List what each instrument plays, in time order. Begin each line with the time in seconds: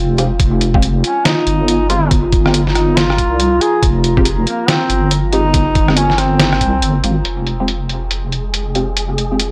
Already playing: wobble bass F1, ambient pad F4 F5
0.18 synth stab G#3 C4 F4 G4, closed hi-hat
0.40 wobble bass F1, ambient pad A#5, kick, closed hi-hat
0.61 closed hi-hat
0.74 synth stab G#3 C4 F4 G4, kick
0.82 closed hi-hat
1.04 duduk C#4, closed hi-hat
1.25 duduk D#4, snare, closed hi-hat
1.47 wobble bass G1, closed hi-hat
1.68 closed hi-hat
1.89 synth stab G#3 C4 F4 G4, duduk F4, closed hi-hat
2.11 kick, closed hi-hat
2.32 kick, closed hi-hat
2.46 synth stab G#3 C4 F4 G4, cross-stick
2.54 closed hi-hat
2.67 snare
2.75 duduk D#4, cross-stick, closed hi-hat
2.97 duduk F4, snare, closed hi-hat
3.10 cross-stick
3.18 wobble bass C2, kick, closed hi-hat
3.40 closed hi-hat
3.61 duduk G#4, closed hi-hat
3.83 wobble bass F1, kick, closed hi-hat
4.04 closed hi-hat
4.17 synth stab G#3 C4 F4 G4, kick
4.25 closed hi-hat
4.47 duduk A#3, closed hi-hat
4.68 duduk C4, snare, closed hi-hat
4.90 wobble bass G1, closed hi-hat
5.11 closed hi-hat
5.32 synth stab G#3 C4 F4 G4, duduk D#4, closed hi-hat
5.54 kick, closed hi-hat
5.75 kick, closed hi-hat
5.88 synth stab G#3 C4 F4 G4, cross-stick
5.97 duduk C#4, closed hi-hat
6.10 snare
6.18 duduk C4, cross-stick, closed hi-hat
6.40 snare, closed hi-hat
6.53 cross-stick
6.61 wobble bass C2, kick, closed hi-hat
6.82 wobble bass G1, closed hi-hat
7.04 wobble bass G#1, synth stab G#3 C4 F4 G4, closed hi-hat
7.25 wobble bass F1, synth texture G#3 G#4, ambient pad F4 F5, closed hi-hat
7.47 closed hi-hat
7.60 synth stab G#3 C4 F4 G4
7.68 closed hi-hat
7.89 closed hi-hat
8.11 closed hi-hat
8.32 closed hi-hat
8.54 closed hi-hat
8.75 synth stab G#3 C4 F4 G4, closed hi-hat
8.97 closed hi-hat
9.18 closed hi-hat
9.31 synth stab G#3 C4 F4 G4
9.40 closed hi-hat